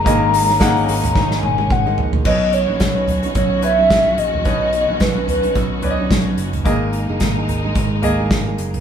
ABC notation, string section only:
X:1
M:4/4
L:1/8
Q:"Swing 16ths" 1/4=109
K:B
V:1 name="String section"
[G,A,C]8 | [D,F,B,CF]8- | [D,F,B,CF]8 | [G,A,D]8 |]